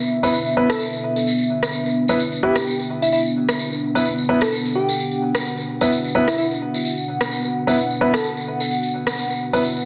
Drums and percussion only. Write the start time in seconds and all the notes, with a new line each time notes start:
0.01 tambourine
0.23 tambourine
0.33 tambourine
0.46 tambourine
0.70 cross-stick, tambourine
0.80 tambourine
0.93 tambourine
1.16 tambourine
1.27 tambourine
1.39 tambourine
1.63 cross-stick, tambourine
1.72 tambourine
1.86 tambourine
2.08 tambourine
2.19 tambourine
2.32 tambourine
2.55 cross-stick, tambourine
2.67 tambourine
2.80 tambourine
3.02 tambourine
3.12 tambourine
3.26 tambourine
3.48 cross-stick, tambourine
3.59 tambourine
3.73 tambourine
3.96 tambourine
4.05 tambourine
4.18 tambourine
4.41 cross-stick, tambourine
4.52 tambourine
4.65 tambourine
4.89 tambourine
4.99 tambourine
5.11 tambourine
5.35 cross-stick, tambourine
5.45 tambourine
5.58 tambourine
5.81 tambourine
5.92 tambourine
6.04 tambourine
6.28 cross-stick, tambourine
6.38 tambourine
6.51 tambourine
6.74 tambourine
6.85 tambourine
6.98 tambourine
7.21 cross-stick, tambourine
7.31 tambourine
7.45 tambourine
7.68 tambourine
7.78 tambourine
7.90 tambourine
8.14 cross-stick, tambourine
8.24 tambourine
8.37 tambourine
8.60 tambourine
8.71 tambourine
8.83 tambourine
9.07 cross-stick, tambourine
9.17 tambourine
9.30 tambourine
9.53 tambourine
9.64 tambourine
9.77 tambourine